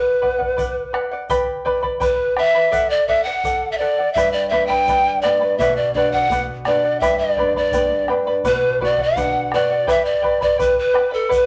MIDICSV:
0, 0, Header, 1, 6, 480
1, 0, Start_track
1, 0, Tempo, 715990
1, 872, Time_signature, 2, 2, 24, 8
1, 7683, End_track
2, 0, Start_track
2, 0, Title_t, "Charango"
2, 0, Program_c, 0, 24
2, 0, Note_on_c, 0, 71, 65
2, 0, Note_on_c, 0, 74, 73
2, 0, Note_on_c, 0, 78, 78
2, 138, Note_off_c, 0, 71, 0
2, 141, Note_off_c, 0, 78, 0
2, 144, Note_off_c, 0, 74, 0
2, 146, Note_on_c, 0, 71, 58
2, 149, Note_on_c, 0, 78, 61
2, 151, Note_on_c, 0, 74, 52
2, 251, Note_off_c, 0, 78, 0
2, 258, Note_off_c, 0, 74, 0
2, 259, Note_on_c, 0, 78, 55
2, 266, Note_on_c, 0, 74, 44
2, 269, Note_off_c, 0, 71, 0
2, 379, Note_off_c, 0, 74, 0
2, 380, Note_on_c, 0, 71, 54
2, 385, Note_off_c, 0, 78, 0
2, 387, Note_on_c, 0, 74, 61
2, 395, Note_on_c, 0, 78, 63
2, 616, Note_off_c, 0, 71, 0
2, 620, Note_off_c, 0, 74, 0
2, 624, Note_off_c, 0, 78, 0
2, 624, Note_on_c, 0, 71, 49
2, 628, Note_on_c, 0, 74, 59
2, 632, Note_on_c, 0, 78, 69
2, 739, Note_off_c, 0, 78, 0
2, 747, Note_on_c, 0, 78, 58
2, 748, Note_off_c, 0, 71, 0
2, 750, Note_off_c, 0, 74, 0
2, 757, Note_on_c, 0, 74, 50
2, 865, Note_off_c, 0, 74, 0
2, 868, Note_off_c, 0, 78, 0
2, 869, Note_on_c, 0, 67, 78
2, 871, Note_on_c, 0, 79, 89
2, 872, Note_on_c, 0, 71, 85
2, 874, Note_on_c, 0, 74, 84
2, 874, Note_on_c, 0, 83, 90
2, 1098, Note_off_c, 0, 79, 0
2, 1101, Note_off_c, 0, 71, 0
2, 1102, Note_off_c, 0, 74, 0
2, 1106, Note_on_c, 0, 79, 66
2, 1108, Note_off_c, 0, 83, 0
2, 1109, Note_on_c, 0, 71, 68
2, 1110, Note_off_c, 0, 67, 0
2, 1110, Note_on_c, 0, 74, 77
2, 1116, Note_on_c, 0, 83, 75
2, 1216, Note_off_c, 0, 83, 0
2, 1221, Note_off_c, 0, 74, 0
2, 1224, Note_on_c, 0, 83, 59
2, 1226, Note_off_c, 0, 71, 0
2, 1229, Note_off_c, 0, 79, 0
2, 1230, Note_on_c, 0, 74, 52
2, 1234, Note_on_c, 0, 71, 44
2, 1337, Note_off_c, 0, 74, 0
2, 1340, Note_off_c, 0, 71, 0
2, 1341, Note_off_c, 0, 83, 0
2, 1341, Note_on_c, 0, 79, 58
2, 1345, Note_on_c, 0, 74, 67
2, 1348, Note_on_c, 0, 71, 62
2, 1349, Note_on_c, 0, 83, 67
2, 1578, Note_off_c, 0, 79, 0
2, 1581, Note_off_c, 0, 71, 0
2, 1585, Note_off_c, 0, 74, 0
2, 1586, Note_on_c, 0, 79, 46
2, 1588, Note_off_c, 0, 83, 0
2, 1589, Note_on_c, 0, 71, 50
2, 1593, Note_on_c, 0, 74, 52
2, 1596, Note_on_c, 0, 83, 55
2, 1699, Note_off_c, 0, 74, 0
2, 1699, Note_off_c, 0, 83, 0
2, 1704, Note_off_c, 0, 71, 0
2, 1707, Note_on_c, 0, 83, 54
2, 1708, Note_off_c, 0, 79, 0
2, 1708, Note_on_c, 0, 74, 46
2, 1712, Note_on_c, 0, 71, 42
2, 1813, Note_off_c, 0, 74, 0
2, 1817, Note_off_c, 0, 71, 0
2, 1820, Note_on_c, 0, 69, 71
2, 1821, Note_on_c, 0, 74, 85
2, 1827, Note_on_c, 0, 78, 87
2, 1829, Note_off_c, 0, 83, 0
2, 2059, Note_off_c, 0, 69, 0
2, 2063, Note_off_c, 0, 74, 0
2, 2064, Note_off_c, 0, 78, 0
2, 2067, Note_on_c, 0, 69, 57
2, 2071, Note_on_c, 0, 74, 56
2, 2072, Note_on_c, 0, 78, 62
2, 2176, Note_off_c, 0, 78, 0
2, 2184, Note_off_c, 0, 74, 0
2, 2184, Note_on_c, 0, 78, 51
2, 2189, Note_off_c, 0, 69, 0
2, 2192, Note_on_c, 0, 74, 42
2, 2304, Note_off_c, 0, 74, 0
2, 2307, Note_off_c, 0, 78, 0
2, 2310, Note_on_c, 0, 69, 52
2, 2312, Note_on_c, 0, 74, 52
2, 2314, Note_on_c, 0, 78, 59
2, 2543, Note_off_c, 0, 69, 0
2, 2543, Note_off_c, 0, 74, 0
2, 2550, Note_off_c, 0, 78, 0
2, 2551, Note_on_c, 0, 69, 46
2, 2551, Note_on_c, 0, 74, 48
2, 2558, Note_on_c, 0, 78, 51
2, 2663, Note_off_c, 0, 78, 0
2, 2669, Note_off_c, 0, 74, 0
2, 2670, Note_off_c, 0, 69, 0
2, 2671, Note_on_c, 0, 78, 51
2, 2683, Note_on_c, 0, 74, 46
2, 2790, Note_off_c, 0, 78, 0
2, 2791, Note_off_c, 0, 74, 0
2, 2795, Note_on_c, 0, 67, 63
2, 2797, Note_on_c, 0, 79, 72
2, 2798, Note_on_c, 0, 83, 78
2, 2799, Note_on_c, 0, 71, 75
2, 2799, Note_on_c, 0, 74, 80
2, 3019, Note_off_c, 0, 79, 0
2, 3026, Note_off_c, 0, 71, 0
2, 3027, Note_on_c, 0, 79, 62
2, 3029, Note_off_c, 0, 74, 0
2, 3030, Note_off_c, 0, 83, 0
2, 3032, Note_off_c, 0, 67, 0
2, 3034, Note_on_c, 0, 71, 54
2, 3037, Note_on_c, 0, 74, 61
2, 3038, Note_on_c, 0, 83, 65
2, 3139, Note_off_c, 0, 83, 0
2, 3142, Note_off_c, 0, 74, 0
2, 3146, Note_off_c, 0, 71, 0
2, 3147, Note_on_c, 0, 83, 55
2, 3148, Note_off_c, 0, 79, 0
2, 3150, Note_on_c, 0, 74, 51
2, 3154, Note_on_c, 0, 71, 44
2, 3267, Note_off_c, 0, 71, 0
2, 3268, Note_off_c, 0, 83, 0
2, 3270, Note_off_c, 0, 74, 0
2, 3271, Note_on_c, 0, 79, 53
2, 3275, Note_on_c, 0, 71, 54
2, 3279, Note_on_c, 0, 74, 57
2, 3281, Note_on_c, 0, 83, 60
2, 3499, Note_off_c, 0, 79, 0
2, 3502, Note_off_c, 0, 71, 0
2, 3507, Note_off_c, 0, 74, 0
2, 3507, Note_on_c, 0, 79, 52
2, 3509, Note_off_c, 0, 83, 0
2, 3510, Note_on_c, 0, 71, 46
2, 3515, Note_on_c, 0, 74, 49
2, 3517, Note_on_c, 0, 83, 55
2, 3616, Note_off_c, 0, 83, 0
2, 3623, Note_off_c, 0, 74, 0
2, 3624, Note_on_c, 0, 83, 51
2, 3628, Note_off_c, 0, 79, 0
2, 3630, Note_off_c, 0, 71, 0
2, 3631, Note_on_c, 0, 74, 46
2, 3637, Note_on_c, 0, 71, 45
2, 3747, Note_off_c, 0, 83, 0
2, 3749, Note_off_c, 0, 71, 0
2, 3750, Note_off_c, 0, 74, 0
2, 3757, Note_on_c, 0, 71, 68
2, 3759, Note_on_c, 0, 74, 77
2, 3764, Note_on_c, 0, 78, 81
2, 3993, Note_off_c, 0, 71, 0
2, 3994, Note_off_c, 0, 74, 0
2, 3996, Note_off_c, 0, 78, 0
2, 4000, Note_on_c, 0, 71, 55
2, 4004, Note_on_c, 0, 74, 60
2, 4009, Note_on_c, 0, 78, 67
2, 4110, Note_off_c, 0, 78, 0
2, 4114, Note_off_c, 0, 71, 0
2, 4117, Note_off_c, 0, 74, 0
2, 4118, Note_on_c, 0, 78, 58
2, 4130, Note_on_c, 0, 74, 46
2, 4228, Note_off_c, 0, 74, 0
2, 4234, Note_off_c, 0, 78, 0
2, 4235, Note_on_c, 0, 71, 53
2, 4236, Note_on_c, 0, 74, 61
2, 4245, Note_on_c, 0, 78, 64
2, 4468, Note_off_c, 0, 71, 0
2, 4473, Note_off_c, 0, 74, 0
2, 4476, Note_on_c, 0, 71, 53
2, 4477, Note_off_c, 0, 78, 0
2, 4480, Note_on_c, 0, 74, 55
2, 4488, Note_on_c, 0, 78, 54
2, 4581, Note_off_c, 0, 78, 0
2, 4589, Note_off_c, 0, 74, 0
2, 4589, Note_on_c, 0, 78, 56
2, 4592, Note_off_c, 0, 71, 0
2, 4598, Note_on_c, 0, 74, 42
2, 4699, Note_off_c, 0, 74, 0
2, 4703, Note_on_c, 0, 67, 67
2, 4704, Note_off_c, 0, 78, 0
2, 4707, Note_on_c, 0, 74, 72
2, 4707, Note_on_c, 0, 79, 74
2, 4709, Note_on_c, 0, 71, 80
2, 4712, Note_on_c, 0, 83, 72
2, 4935, Note_off_c, 0, 79, 0
2, 4942, Note_off_c, 0, 71, 0
2, 4943, Note_on_c, 0, 79, 58
2, 4945, Note_off_c, 0, 74, 0
2, 4946, Note_off_c, 0, 67, 0
2, 4949, Note_off_c, 0, 83, 0
2, 4950, Note_on_c, 0, 71, 58
2, 4953, Note_on_c, 0, 74, 64
2, 4957, Note_on_c, 0, 83, 73
2, 5062, Note_off_c, 0, 83, 0
2, 5065, Note_off_c, 0, 74, 0
2, 5066, Note_off_c, 0, 79, 0
2, 5069, Note_off_c, 0, 71, 0
2, 5070, Note_on_c, 0, 83, 52
2, 5073, Note_on_c, 0, 74, 42
2, 5081, Note_on_c, 0, 71, 43
2, 5177, Note_off_c, 0, 71, 0
2, 5184, Note_off_c, 0, 74, 0
2, 5184, Note_off_c, 0, 83, 0
2, 5184, Note_on_c, 0, 79, 53
2, 5185, Note_on_c, 0, 71, 53
2, 5192, Note_on_c, 0, 74, 64
2, 5192, Note_on_c, 0, 83, 69
2, 5414, Note_off_c, 0, 71, 0
2, 5414, Note_off_c, 0, 79, 0
2, 5416, Note_off_c, 0, 74, 0
2, 5422, Note_on_c, 0, 71, 51
2, 5422, Note_on_c, 0, 79, 46
2, 5423, Note_off_c, 0, 83, 0
2, 5424, Note_on_c, 0, 74, 49
2, 5431, Note_on_c, 0, 83, 55
2, 5535, Note_off_c, 0, 74, 0
2, 5536, Note_off_c, 0, 83, 0
2, 5542, Note_off_c, 0, 71, 0
2, 5543, Note_on_c, 0, 74, 50
2, 5544, Note_on_c, 0, 83, 56
2, 5546, Note_off_c, 0, 79, 0
2, 5550, Note_on_c, 0, 71, 46
2, 5654, Note_off_c, 0, 71, 0
2, 5656, Note_off_c, 0, 74, 0
2, 5662, Note_on_c, 0, 71, 77
2, 5664, Note_on_c, 0, 74, 71
2, 5665, Note_on_c, 0, 78, 84
2, 5667, Note_off_c, 0, 83, 0
2, 5896, Note_off_c, 0, 71, 0
2, 5900, Note_off_c, 0, 74, 0
2, 5904, Note_on_c, 0, 71, 57
2, 5905, Note_off_c, 0, 78, 0
2, 5908, Note_on_c, 0, 74, 68
2, 5913, Note_on_c, 0, 78, 57
2, 6016, Note_off_c, 0, 78, 0
2, 6024, Note_off_c, 0, 74, 0
2, 6024, Note_on_c, 0, 78, 56
2, 6027, Note_off_c, 0, 71, 0
2, 6032, Note_on_c, 0, 74, 42
2, 6143, Note_off_c, 0, 74, 0
2, 6145, Note_on_c, 0, 71, 53
2, 6147, Note_off_c, 0, 78, 0
2, 6151, Note_on_c, 0, 74, 55
2, 6154, Note_on_c, 0, 78, 64
2, 6387, Note_off_c, 0, 74, 0
2, 6388, Note_off_c, 0, 71, 0
2, 6392, Note_off_c, 0, 78, 0
2, 6394, Note_on_c, 0, 71, 51
2, 6395, Note_on_c, 0, 74, 55
2, 6402, Note_on_c, 0, 78, 64
2, 6497, Note_off_c, 0, 78, 0
2, 6505, Note_on_c, 0, 78, 59
2, 6509, Note_off_c, 0, 74, 0
2, 6512, Note_off_c, 0, 71, 0
2, 6517, Note_on_c, 0, 74, 53
2, 6615, Note_off_c, 0, 74, 0
2, 6618, Note_on_c, 0, 67, 73
2, 6619, Note_off_c, 0, 78, 0
2, 6622, Note_on_c, 0, 71, 81
2, 6622, Note_on_c, 0, 79, 65
2, 6625, Note_on_c, 0, 74, 86
2, 6628, Note_on_c, 0, 83, 84
2, 6845, Note_off_c, 0, 79, 0
2, 6849, Note_off_c, 0, 71, 0
2, 6853, Note_on_c, 0, 79, 55
2, 6854, Note_off_c, 0, 74, 0
2, 6857, Note_on_c, 0, 71, 56
2, 6858, Note_off_c, 0, 83, 0
2, 6862, Note_on_c, 0, 74, 67
2, 6864, Note_off_c, 0, 67, 0
2, 6866, Note_on_c, 0, 83, 69
2, 6969, Note_off_c, 0, 83, 0
2, 6976, Note_off_c, 0, 74, 0
2, 6977, Note_on_c, 0, 83, 52
2, 6981, Note_off_c, 0, 71, 0
2, 6982, Note_off_c, 0, 79, 0
2, 6984, Note_on_c, 0, 74, 49
2, 6989, Note_on_c, 0, 71, 46
2, 7091, Note_on_c, 0, 79, 53
2, 7093, Note_off_c, 0, 71, 0
2, 7093, Note_off_c, 0, 74, 0
2, 7093, Note_off_c, 0, 83, 0
2, 7101, Note_on_c, 0, 71, 64
2, 7101, Note_on_c, 0, 74, 60
2, 7101, Note_on_c, 0, 83, 58
2, 7321, Note_off_c, 0, 79, 0
2, 7324, Note_off_c, 0, 71, 0
2, 7326, Note_off_c, 0, 74, 0
2, 7327, Note_off_c, 0, 83, 0
2, 7329, Note_on_c, 0, 79, 51
2, 7332, Note_on_c, 0, 71, 48
2, 7334, Note_on_c, 0, 74, 60
2, 7336, Note_on_c, 0, 83, 56
2, 7441, Note_off_c, 0, 83, 0
2, 7445, Note_off_c, 0, 74, 0
2, 7449, Note_on_c, 0, 83, 57
2, 7452, Note_off_c, 0, 71, 0
2, 7453, Note_on_c, 0, 74, 52
2, 7460, Note_off_c, 0, 79, 0
2, 7460, Note_on_c, 0, 71, 42
2, 7561, Note_off_c, 0, 71, 0
2, 7564, Note_off_c, 0, 74, 0
2, 7569, Note_on_c, 0, 71, 79
2, 7572, Note_on_c, 0, 74, 75
2, 7577, Note_on_c, 0, 78, 82
2, 7580, Note_off_c, 0, 83, 0
2, 7683, Note_off_c, 0, 71, 0
2, 7683, Note_off_c, 0, 74, 0
2, 7683, Note_off_c, 0, 78, 0
2, 7683, End_track
3, 0, Start_track
3, 0, Title_t, "Pan flute"
3, 0, Program_c, 1, 75
3, 0, Note_on_c, 1, 71, 83
3, 616, Note_off_c, 1, 71, 0
3, 1353, Note_on_c, 1, 71, 80
3, 1575, Note_off_c, 1, 71, 0
3, 1598, Note_on_c, 1, 76, 100
3, 1945, Note_on_c, 1, 74, 85
3, 1955, Note_off_c, 1, 76, 0
3, 2060, Note_off_c, 1, 74, 0
3, 2064, Note_on_c, 1, 76, 86
3, 2168, Note_on_c, 1, 78, 106
3, 2178, Note_off_c, 1, 76, 0
3, 2490, Note_off_c, 1, 78, 0
3, 2494, Note_on_c, 1, 76, 59
3, 2533, Note_on_c, 1, 74, 81
3, 2543, Note_off_c, 1, 76, 0
3, 2767, Note_off_c, 1, 74, 0
3, 2771, Note_on_c, 1, 76, 98
3, 2891, Note_off_c, 1, 76, 0
3, 2899, Note_on_c, 1, 74, 88
3, 3006, Note_off_c, 1, 74, 0
3, 3011, Note_on_c, 1, 76, 85
3, 3125, Note_off_c, 1, 76, 0
3, 3129, Note_on_c, 1, 79, 123
3, 3497, Note_on_c, 1, 74, 95
3, 3507, Note_off_c, 1, 79, 0
3, 3738, Note_off_c, 1, 74, 0
3, 3742, Note_on_c, 1, 76, 88
3, 3864, Note_on_c, 1, 74, 85
3, 3874, Note_off_c, 1, 76, 0
3, 3977, Note_off_c, 1, 74, 0
3, 3981, Note_on_c, 1, 74, 92
3, 4102, Note_on_c, 1, 78, 115
3, 4112, Note_off_c, 1, 74, 0
3, 4301, Note_off_c, 1, 78, 0
3, 4463, Note_on_c, 1, 74, 89
3, 4690, Note_off_c, 1, 74, 0
3, 4694, Note_on_c, 1, 76, 84
3, 4816, Note_on_c, 1, 74, 83
3, 4826, Note_off_c, 1, 76, 0
3, 5062, Note_off_c, 1, 74, 0
3, 5076, Note_on_c, 1, 74, 84
3, 5408, Note_off_c, 1, 74, 0
3, 5681, Note_on_c, 1, 71, 96
3, 5899, Note_off_c, 1, 71, 0
3, 5927, Note_on_c, 1, 74, 85
3, 6052, Note_on_c, 1, 78, 109
3, 6062, Note_off_c, 1, 74, 0
3, 6392, Note_off_c, 1, 78, 0
3, 6396, Note_on_c, 1, 74, 84
3, 6631, Note_on_c, 1, 76, 88
3, 6641, Note_off_c, 1, 74, 0
3, 6734, Note_off_c, 1, 76, 0
3, 6738, Note_on_c, 1, 74, 82
3, 6967, Note_off_c, 1, 74, 0
3, 6984, Note_on_c, 1, 74, 93
3, 7099, Note_off_c, 1, 74, 0
3, 7111, Note_on_c, 1, 71, 88
3, 7222, Note_off_c, 1, 71, 0
3, 7234, Note_on_c, 1, 71, 85
3, 7465, Note_on_c, 1, 69, 76
3, 7475, Note_off_c, 1, 71, 0
3, 7588, Note_off_c, 1, 69, 0
3, 7599, Note_on_c, 1, 71, 82
3, 7683, Note_off_c, 1, 71, 0
3, 7683, End_track
4, 0, Start_track
4, 0, Title_t, "Nylon-string guitar"
4, 0, Program_c, 2, 24
4, 2790, Note_on_c, 2, 43, 60
4, 3028, Note_on_c, 2, 59, 54
4, 3261, Note_off_c, 2, 59, 0
4, 3267, Note_on_c, 2, 55, 53
4, 3501, Note_off_c, 2, 55, 0
4, 3517, Note_on_c, 2, 59, 61
4, 3722, Note_off_c, 2, 43, 0
4, 3744, Note_on_c, 2, 47, 57
4, 3746, Note_off_c, 2, 59, 0
4, 3985, Note_on_c, 2, 62, 62
4, 4220, Note_off_c, 2, 62, 0
4, 4225, Note_on_c, 2, 59, 59
4, 4460, Note_off_c, 2, 59, 0
4, 4474, Note_on_c, 2, 62, 55
4, 4680, Note_off_c, 2, 47, 0
4, 4704, Note_off_c, 2, 62, 0
4, 4714, Note_on_c, 2, 43, 61
4, 4964, Note_on_c, 2, 62, 55
4, 5188, Note_off_c, 2, 62, 0
4, 5191, Note_on_c, 2, 59, 56
4, 5423, Note_off_c, 2, 59, 0
4, 5431, Note_on_c, 2, 62, 56
4, 5645, Note_off_c, 2, 43, 0
4, 5663, Note_off_c, 2, 62, 0
4, 5665, Note_on_c, 2, 47, 62
4, 5913, Note_on_c, 2, 66, 58
4, 6144, Note_off_c, 2, 66, 0
4, 6149, Note_on_c, 2, 62, 57
4, 6382, Note_off_c, 2, 62, 0
4, 6395, Note_on_c, 2, 66, 59
4, 6601, Note_off_c, 2, 47, 0
4, 6625, Note_off_c, 2, 66, 0
4, 7683, End_track
5, 0, Start_track
5, 0, Title_t, "Bombo"
5, 156, Note_on_c, 9, 43, 51
5, 223, Note_off_c, 9, 43, 0
5, 275, Note_on_c, 9, 43, 53
5, 342, Note_off_c, 9, 43, 0
5, 389, Note_on_c, 9, 43, 72
5, 456, Note_off_c, 9, 43, 0
5, 630, Note_on_c, 9, 37, 55
5, 697, Note_off_c, 9, 37, 0
5, 868, Note_on_c, 9, 43, 72
5, 935, Note_off_c, 9, 43, 0
5, 1110, Note_on_c, 9, 43, 56
5, 1177, Note_off_c, 9, 43, 0
5, 1226, Note_on_c, 9, 43, 52
5, 1293, Note_off_c, 9, 43, 0
5, 1344, Note_on_c, 9, 43, 80
5, 1411, Note_off_c, 9, 43, 0
5, 1586, Note_on_c, 9, 37, 55
5, 1653, Note_off_c, 9, 37, 0
5, 1827, Note_on_c, 9, 43, 62
5, 1894, Note_off_c, 9, 43, 0
5, 2067, Note_on_c, 9, 43, 48
5, 2134, Note_off_c, 9, 43, 0
5, 2304, Note_on_c, 9, 43, 64
5, 2371, Note_off_c, 9, 43, 0
5, 2786, Note_on_c, 9, 43, 63
5, 2853, Note_off_c, 9, 43, 0
5, 3031, Note_on_c, 9, 43, 45
5, 3098, Note_off_c, 9, 43, 0
5, 3150, Note_on_c, 9, 43, 47
5, 3217, Note_off_c, 9, 43, 0
5, 3269, Note_on_c, 9, 43, 68
5, 3337, Note_off_c, 9, 43, 0
5, 3510, Note_on_c, 9, 37, 50
5, 3577, Note_off_c, 9, 37, 0
5, 3749, Note_on_c, 9, 43, 65
5, 3816, Note_off_c, 9, 43, 0
5, 3985, Note_on_c, 9, 43, 51
5, 4052, Note_off_c, 9, 43, 0
5, 4111, Note_on_c, 9, 43, 49
5, 4178, Note_off_c, 9, 43, 0
5, 4221, Note_on_c, 9, 43, 70
5, 4288, Note_off_c, 9, 43, 0
5, 4460, Note_on_c, 9, 37, 53
5, 4527, Note_off_c, 9, 37, 0
5, 4701, Note_on_c, 9, 43, 71
5, 4768, Note_off_c, 9, 43, 0
5, 4937, Note_on_c, 9, 43, 53
5, 5004, Note_off_c, 9, 43, 0
5, 5050, Note_on_c, 9, 43, 56
5, 5117, Note_off_c, 9, 43, 0
5, 5173, Note_on_c, 9, 43, 75
5, 5240, Note_off_c, 9, 43, 0
5, 5418, Note_on_c, 9, 37, 45
5, 5485, Note_off_c, 9, 37, 0
5, 5656, Note_on_c, 9, 43, 58
5, 5723, Note_off_c, 9, 43, 0
5, 5897, Note_on_c, 9, 43, 48
5, 5964, Note_off_c, 9, 43, 0
5, 6014, Note_on_c, 9, 43, 49
5, 6081, Note_off_c, 9, 43, 0
5, 6142, Note_on_c, 9, 43, 73
5, 6209, Note_off_c, 9, 43, 0
5, 6380, Note_on_c, 9, 37, 53
5, 6447, Note_off_c, 9, 37, 0
5, 6617, Note_on_c, 9, 43, 69
5, 6684, Note_off_c, 9, 43, 0
5, 6861, Note_on_c, 9, 43, 59
5, 6928, Note_off_c, 9, 43, 0
5, 6981, Note_on_c, 9, 43, 62
5, 7048, Note_off_c, 9, 43, 0
5, 7103, Note_on_c, 9, 43, 79
5, 7170, Note_off_c, 9, 43, 0
5, 7343, Note_on_c, 9, 37, 49
5, 7410, Note_off_c, 9, 37, 0
5, 7584, Note_on_c, 9, 43, 62
5, 7651, Note_off_c, 9, 43, 0
5, 7683, End_track
6, 0, Start_track
6, 0, Title_t, "Drums"
6, 393, Note_on_c, 9, 82, 76
6, 460, Note_off_c, 9, 82, 0
6, 871, Note_on_c, 9, 82, 90
6, 938, Note_off_c, 9, 82, 0
6, 1348, Note_on_c, 9, 82, 77
6, 1415, Note_off_c, 9, 82, 0
6, 1828, Note_on_c, 9, 82, 98
6, 1895, Note_off_c, 9, 82, 0
6, 2313, Note_on_c, 9, 82, 96
6, 2380, Note_off_c, 9, 82, 0
6, 2797, Note_on_c, 9, 82, 97
6, 2864, Note_off_c, 9, 82, 0
6, 3269, Note_on_c, 9, 82, 85
6, 3336, Note_off_c, 9, 82, 0
6, 3755, Note_on_c, 9, 82, 94
6, 3822, Note_off_c, 9, 82, 0
6, 4232, Note_on_c, 9, 82, 88
6, 4299, Note_off_c, 9, 82, 0
6, 4709, Note_on_c, 9, 82, 101
6, 4776, Note_off_c, 9, 82, 0
6, 5183, Note_on_c, 9, 82, 92
6, 5250, Note_off_c, 9, 82, 0
6, 5666, Note_on_c, 9, 82, 107
6, 5733, Note_off_c, 9, 82, 0
6, 6149, Note_on_c, 9, 82, 95
6, 6216, Note_off_c, 9, 82, 0
6, 6631, Note_on_c, 9, 82, 88
6, 6698, Note_off_c, 9, 82, 0
6, 7106, Note_on_c, 9, 82, 75
6, 7173, Note_off_c, 9, 82, 0
6, 7589, Note_on_c, 9, 82, 90
6, 7656, Note_off_c, 9, 82, 0
6, 7683, End_track
0, 0, End_of_file